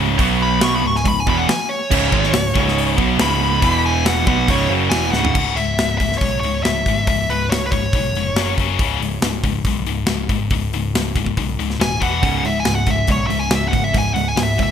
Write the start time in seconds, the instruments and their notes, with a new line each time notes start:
Already playing: picked electric bass C#1, distorted electric guitar C#2 G#2 C#3
0.19 picked electric bass B1, distorted electric guitar B2 F#3 B3, kick, open hi-hat
0.42 lead electric guitar B5
0.61 picked electric bass B1, distorted electric guitar B2 F#3 B3, lead electric guitar C#6, snare, open hi-hat
0.75 lead electric guitar B5
0.84 picked electric bass C#1, distorted electric guitar C#2 G#2, lead electric guitar C#6
0.96 lead electric guitar G#5, snare
1.05 picked electric bass C#1, distorted electric guitar C#2 G#2, lead electric guitar B5, kick, open hi-hat
1.20 lead electric guitar G#5
1.26 picked electric bass E1, distorted electric guitar E2 B2 E3, lead electric guitar B5, kick
1.37 lead electric guitar F#5
1.48 lead electric guitar G#5, muted picked electric bass stroke, muted distorted electric guitar stroke, muted overdriven electric guitar stroke, snare, open hi-hat
1.69 lead electric guitar C#5
1.91 picked electric bass C#1, distorted electric guitar C#2 G#2 C#3, kick, crash
2.12 picked electric bass G#1, distorted electric guitar G#2 D#3 G#3, kick
2.23 snare
2.32 picked electric bass C#1, distorted electric guitar C#2 G#2, snare, open hi-hat
2.54 picked electric bass C#1, distorted electric guitar C#2 G#2 C#3, kick
2.68 snare
2.78 open hi-hat
2.97 picked electric bass B1, distorted electric guitar B2 F#3 B3, kick
3.18 picked electric bass C#1, distorted electric guitar C#2 G#2 C#3, lead electric guitar B5, snare, open hi-hat
3.62 picked electric bass E1, distorted electric guitar E2 B2 E3, kick, open hi-hat
3.86 lead electric guitar G#5
4.06 lead electric guitar F#5, snare, open hi-hat
4.26 picked electric bass B1, distorted electric guitar B2 F#3 B3, lead electric guitar F#5, kick
4.48 picked electric bass C#1, distorted electric guitar C#2 G#2 C#3, lead electric guitar C#5, kick, open hi-hat
4.69 picked electric bass F#1, distorted electric guitar F#2 C#3 F#3
4.90 picked electric bass E1, distorted electric guitar E2 B2 E3, lead electric guitar G#5, snare, open hi-hat
5.11 picked electric bass C#1, distorted electric guitar C#2 G#2, lead electric guitar F#5, snare
5.16 distorted electric guitar C#3
5.25 floor tom
5.35 picked electric bass C#1, distorted electric guitar C#2 G#2 C#3, kick, crash
5.56 picked electric bass C#1, distorted electric guitar C#2 G#2, lead electric guitar E5, open hi-hat
5.78 picked electric bass C#1, distorted electric guitar C#2 G#2, snare, open hi-hat
5.98 distorted electric guitar C#2 G#2, lead electric guitar E5, kick, open hi-hat
6.12 snare
6.18 picked electric bass B1, distorted electric guitar C#2 G#2, lead electric guitar C#5, kick, open hi-hat
6.41 picked electric bass C#1, distorted electric guitar C#2, lead electric guitar C#5, open hi-hat
6.45 distorted electric guitar G#2
6.63 picked electric bass C#1, distorted electric guitar C#2 G#2, lead electric guitar E5, snare, open hi-hat
6.86 picked electric bass G#1, distorted electric guitar C#2 G#2, kick, open hi-hat
7.07 picked electric bass C#1, distorted electric guitar C#2 G#2, lead electric guitar E5, kick, open hi-hat
7.28 picked electric bass C#1, distorted electric guitar C#2 G#2, lead electric guitar B4, open hi-hat
7.49 picked electric bass C#1, distorted electric guitar C#2, lead electric guitar C#5, snare, open hi-hat
7.53 distorted electric guitar G#2
7.66 lead electric guitar B4
7.71 distorted electric guitar C#2 G#2, lead electric guitar C#5, kick, open hi-hat
7.93 picked electric bass B1, distorted electric guitar C#2 G#2, kick, open hi-hat
8.12 picked electric bass F1, open hi-hat
8.17 distorted electric guitar C#2 G#2
8.35 picked electric bass F#1, distorted electric guitar F#2 C#3 F#3, snare, open hi-hat
8.58 picked electric bass F#1, distorted electric guitar F#2 C#3 F#3, kick, open hi-hat
8.79 picked electric bass C#1, distorted electric guitar C#2 G#2 C#3, kick, open hi-hat
9.00 picked electric bass C#1, distorted electric guitar C#2 G#2, open hi-hat
9.21 picked electric bass C#1, distorted electric guitar C#2 G#2, snare, open hi-hat
9.44 distorted electric guitar C#2 G#2, kick, open hi-hat
9.64 picked electric bass B1, distorted electric guitar C#2 G#2, kick, open hi-hat
9.86 picked electric bass C#1, distorted electric guitar C#2 G#2, open hi-hat
10.06 picked electric bass C#1, distorted electric guitar C#2 G#2, snare, open hi-hat
10.29 picked electric bass G#1, distorted electric guitar C#2 G#2, kick, open hi-hat
10.50 picked electric bass C#1, distorted electric guitar C#2 G#2, kick, open hi-hat
10.71 picked electric bass C#1, distorted electric guitar C#2 G#2, open hi-hat
10.94 picked electric bass C#1, distorted electric guitar C#2 G#2, snare, open hi-hat
11.16 distorted electric guitar C#2 G#2, kick, open hi-hat
11.26 kick
11.37 picked electric bass B1, distorted electric guitar C#2 G#2, kick, open hi-hat
11.59 picked electric bass C#1, distorted electric guitar C#2 G#2, open hi-hat
11.70 snare
11.79 picked electric bass D#1, distorted electric guitar C#2 G#2, lead electric guitar G#5, snare, open hi-hat
12.00 picked electric bass E1, distorted electric guitar E2 B2 E3, lead electric guitar F#5, kick, open hi-hat
12.22 picked electric bass C#1, distorted electric guitar C#2 G#2 C#3, kick, open hi-hat
12.44 picked electric bass C#1, distorted electric guitar C#2 G#2, lead electric guitar E5, open hi-hat
12.60 lead electric guitar G#5
12.65 picked electric bass C#1, distorted electric guitar C#2 G#2, snare, open hi-hat
12.75 lead electric guitar F#5
12.86 distorted electric guitar C#2 G#2, kick, open hi-hat
12.90 lead electric guitar E5
13.07 picked electric bass B1, distorted electric guitar C#2 G#2, kick, open hi-hat
13.11 lead electric guitar C#5
13.27 distorted electric guitar C#2 G#2, lead electric guitar E5, open hi-hat
13.32 picked electric bass C#1
13.39 lead electric guitar G#5
13.51 picked electric bass C#1, distorted electric guitar C#2 G#2, snare, open hi-hat
13.55 lead electric guitar E5
13.69 distorted electric guitar C#2 G#2, lead electric guitar F#5
13.73 picked electric bass G#1, kick, open hi-hat
13.84 lead electric guitar E5
13.93 picked electric bass C#1, distorted electric guitar C#2 G#2, kick, open hi-hat
13.98 lead electric guitar G#5
14.14 picked electric bass C#1, distorted electric guitar C#2 G#2, lead electric guitar F#5, open hi-hat
14.28 lead electric guitar G#5
14.36 picked electric bass C#1, distorted electric guitar C#2 G#2, snare, open hi-hat
14.43 lead electric guitar E5
14.58 distorted electric guitar C#2 G#2, kick, open hi-hat
14.63 lead electric guitar E5